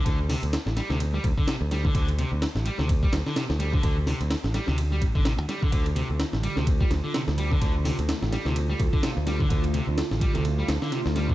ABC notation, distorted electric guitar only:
X:1
M:4/4
L:1/16
Q:"Swing 16ths" 1/4=127
K:Dm
V:1 name="Distorted electric guitar" clef=bass
D, z C, z3 G, C, z G, z D, C, z G, D, | D, z C, z3 G, C, z G, z D, C, z G, D, | D, z C, z3 G, C, z G, z D, C, z G, D, | D, z C, z3 G, C, z G, z D, C, z G, D, |
D, z C, z3 G, C, z G, z D, C, z G, D, | D, z C, z3 G, C, z G, z D, C, z G, D, |]